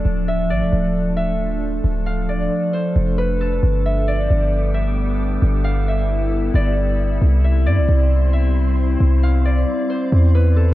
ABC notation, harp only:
X:1
M:4/4
L:1/8
Q:1/4=134
K:Ddor
V:1 name="Harp"
z e d3 e3 | z f d2 c2 B A | z e d3 e3 | z f e3 d3 |
z e d3 e3 | z f d2 c2 B A |]